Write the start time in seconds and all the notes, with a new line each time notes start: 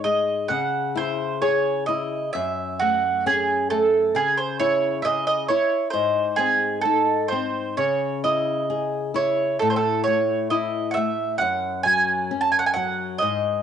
Already playing: G#2
0.04 G#3 D#5
0.48 C#3 F#5
0.95 E4 C5
1.42 G#4 C#5
1.86 E4 D#5
2.33 F#2 E5
2.80 A3 F#4
3.26 C#4 G#4
3.70 A3 A4
4.15 C#3 G#4
4.37 C5
4.60 E4 C#5
5.02 C#3 D#5 E5
5.27 D#5
5.48 E4 C#5
5.90 G#2 C5
6.36 C4 G#4
6.81 D#4 A4
7.28 C4 C5
7.77 C#3 C#5
8.24 E4 D#5
8.70 G#4
9.14 E4 C#5
9.59 A2 A4
9.70 C5
9.76 A4
10.04 A3 C#5
10.50 E4 D#5
10.91 E5 F#5
10.97 A3
11.38 F#2 F#5
11.83 F#3 G#5
12.31 C#4
12.41 A5
12.52 G#5
12.59 F#5
12.66 G#5
12.74 F#3 F#5
13.19 G#2 D#5